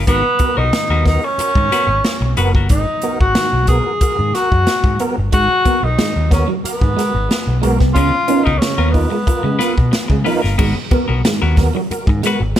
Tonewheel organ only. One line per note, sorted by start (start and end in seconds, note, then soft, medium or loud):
0.07 0.23 G#2 medium
0.07 0.23 D#3 medium
0.40 0.56 B3 loud
0.40 0.56 F#4 medium
0.40 0.56 A#4 loud
0.58 0.64 F#4 soft
0.58 0.64 A#4 soft
0.72 0.88 G#2 medium
0.72 0.88 D#3 medium
1.05 1.21 B3 medium
1.05 1.21 F#4 medium
1.05 1.22 A#4 medium
1.23 1.29 F#4 soft
1.23 1.29 A#4 medium
1.38 1.54 F#4 medium
1.38 1.54 A#4 medium
1.56 1.70 G#2 medium
1.56 1.70 D#3 medium
1.71 1.87 F#4 medium
1.71 1.87 A#4 medium
2.37 2.53 B3 loud
2.37 2.53 F#4 medium
2.37 2.53 A#4 loud
2.70 2.86 G#2 medium
2.70 2.86 D#3 medium
3.03 3.19 B3 loud
3.03 3.19 F#4 medium
3.03 3.19 A#4 loud
3.20 3.26 F#4 soft
3.20 3.26 A#4 soft
3.36 3.52 G#2 medium
3.36 3.51 D#3 medium
3.69 3.85 B3 medium
3.69 3.84 F#4 medium
3.69 3.85 A#4 medium
3.86 3.93 F#4 soft
3.86 3.92 A#4 soft
4.01 4.17 F#4 medium
4.01 4.17 A#4 medium
4.19 4.33 G#2 medium
4.19 4.33 D#3 medium
4.34 4.50 F#4 medium
4.34 4.50 A#4 medium
5.00 5.16 B3 medium
5.00 5.16 F#4 medium
5.00 5.16 A#4 loud
5.33 5.49 G#2 medium
5.33 5.49 D#3 medium
5.66 5.81 B3 loud
5.66 5.82 F#4 medium
5.66 5.82 A#4 loud
5.84 5.90 F#4 soft
5.84 5.90 A#4 soft
5.98 6.14 G#2 medium
5.98 6.14 D#3 medium
6.31 6.47 B3 medium
6.31 6.47 F#4 medium
6.31 6.47 A#4 medium
6.49 6.55 F#4 soft
6.49 6.55 A#4 soft
6.64 6.80 F#4 medium
6.64 6.80 A#4 medium
6.82 6.95 G#2 medium
6.82 6.95 D#3 medium
6.97 7.13 F#4 medium
6.97 7.13 A#4 medium
7.62 7.78 B3 medium
7.62 7.78 F#4 medium
7.62 7.78 A#4 loud
7.96 8.11 C#3 medium
7.96 8.11 G#3 medium
8.28 8.44 B3 loud
8.28 8.44 D#4 medium
8.28 8.44 F4 medium
8.28 8.44 A#4 loud
8.46 8.52 F4 soft
8.46 8.52 A#4 soft
8.61 8.77 C#3 medium
8.61 8.77 G#3 medium
8.94 9.10 B3 medium
8.94 9.10 D#4 medium
8.94 9.10 F4 medium
8.94 9.10 A#4 medium
9.12 9.18 F4 soft
9.12 9.18 A#4 soft
9.27 9.43 F4 medium
9.27 9.43 A#4 medium
9.45 9.58 C#3 medium
9.45 9.59 G#3 medium
9.59 9.75 F4 medium
9.59 9.76 A#4 medium
10.26 10.41 B3 medium
10.26 10.41 D#4 medium
10.26 10.42 F4 medium
10.26 10.42 A#4 loud
10.59 10.75 G#2 medium
10.59 10.75 D#3 medium
10.91 11.07 B3 medium
10.91 11.07 F#4 medium
10.91 11.07 A#4 loud
11.10 11.16 F#4 soft
11.10 11.16 A#4 soft
11.26 11.41 G#2 medium
11.26 11.41 D#3 medium
11.58 11.73 B3 medium
11.58 11.73 F#4 medium
11.58 11.73 A#4 medium
11.75 11.81 F#4 soft
11.75 11.81 A#4 soft
11.91 12.06 F#4 medium
11.91 12.06 A#4 medium
12.08 12.22 G#2 medium
12.08 12.22 D#3 medium
12.24 12.39 F#4 medium
12.24 12.39 A#4 medium